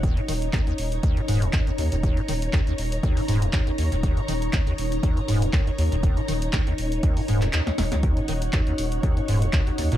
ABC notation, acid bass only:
X:1
M:4/4
L:1/16
Q:"Swing 16ths" 1/4=120
K:Ebm
V:1 name="Acid bass" clef=bass
E,, D, E, z E,, E,, z2 E,, D, A,, E,, E,, E,, E,, E,, | E,, D, E, z E,, E,, z2 E,, D, A,, E,, E,, E,, E,, E,, | E,, D, E, z E,, E,, z2 E,, D, A,, E,, E,, E,, E,, E,, | E,, D, E, z E,, E,, z2 E,, D, A,, E,, E,, E,, E,, E,, |
E,, D, E, z E,, E,, z2 E,, D, A,, E,, E,, E,, E,, B,, |]